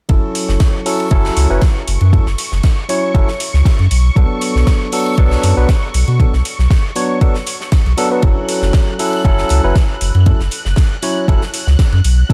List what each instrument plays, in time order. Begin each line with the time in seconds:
0.09 sub bass F#1, tine electric piano F#3 C#4 E4 A4, analog synth pad C#6, kick, ride
0.35 open hi-hat, ride
0.48 sub bass F#1, snare
0.60 kick, snare, ride
0.85 tine electric piano F#3 C#4 E4 A4, open hi-hat
1.00 ride
1.11 sub bass F#1, tine electric piano F#3 C#4 E4 A4, kick, ride
1.25 snare
1.37 sub bass C#2, open hi-hat, ride
1.50 sub bass F#1, tine electric piano F#3 C#4 E4 B4
1.61 kick, snare, ride
1.88 sub bass F#1, open hi-hat, ride
2.01 sub bass F#2, ride
2.13 tine electric piano F#3 C#4 E4 A4, kick, ride
2.26 sub bass F#1, snare
2.38 open hi-hat, ride
2.52 sub bass F#1, snare
2.63 kick, snare, ride
2.89 tine electric piano F#3 C#4 E4 C#5, open hi-hat, ride
3.14 sub bass F#1, tine electric piano F#3 C#4 E4 A4, kick, ride
3.28 snare
3.40 open hi-hat, ride
3.54 sub bass C#2, snare
3.65 kick, snare, ride
3.79 sub bass F#2, ride
3.91 sub bass B1, open hi-hat, ride
4.15 sub bass B1, tine electric piano F#3 B3 D4 A4, kick, ride
4.41 open hi-hat, ride
4.55 sub bass B1, snare
4.67 kick, snare, ride
4.92 tine electric piano F#3 B3 D4 A4, open hi-hat
5.06 ride
5.18 sub bass B1, tine electric piano B3 D4 A4, kick, ride
5.31 snare
5.43 sub bass F#2, open hi-hat, ride
5.57 sub bass B1, tine electric piano F#3 B3 D4 B4
5.69 kick, snare, ride
5.94 sub bass B1, open hi-hat, ride
6.08 sub bass B2, ride
6.19 tine electric piano F#3 B3 D4 A4, kick, ride
6.33 sub bass B1, snare
6.45 open hi-hat, ride
6.59 sub bass B1, snare
6.71 kick, snare, ride
6.95 tine electric piano F#3 B3 D4 C#5, open hi-hat, ride
7.21 tine electric piano F#3 B3 D4 A4, kick, ride
7.35 snare
7.46 open hi-hat, ride
7.61 snare
7.72 kick, snare, ride
7.86 sub bass B1, ride
7.97 tine electric piano F#3 B3 D4 A4, open hi-hat, ride
8.11 tine electric piano F#3 B3 D4 B4
8.22 sub bass F#1, tine electric piano F#3 C#4, analog synth pad F#6, kick, ride
8.48 open hi-hat, ride
8.62 sub bass F#1, snare
8.73 kick, snare, ride
8.99 tine electric piano F#3 C#4 E4 A4, open hi-hat
9.13 ride
9.24 sub bass F#1, tine electric piano F#3 C#4 E4 A4, kick, ride
9.38 snare
9.49 sub bass C#2, open hi-hat, ride
9.63 sub bass F#1, tine electric piano F#3 C#4 E4 B4
9.75 kick, snare, ride
10.01 sub bass F#1, open hi-hat, ride
10.15 sub bass F#2, ride
10.26 tine electric piano F#3 C#4 E4 A4, kick, ride
10.40 sub bass F#1, snare
10.51 open hi-hat, ride
10.65 sub bass F#1, snare
10.76 kick, snare, ride
11.02 tine electric piano F#3 C#4 E4 C#5, open hi-hat, ride
11.28 sub bass F#1, tine electric piano F#3 C#4 E4 A4, kick, ride
11.42 snare
11.54 open hi-hat, ride
11.67 sub bass C#2, snare
11.79 kick, snare, ride
11.92 sub bass F#2, ride
12.04 sub bass B1, open hi-hat, ride
12.29 sub bass B1, tine electric piano F#3 B3, kick, ride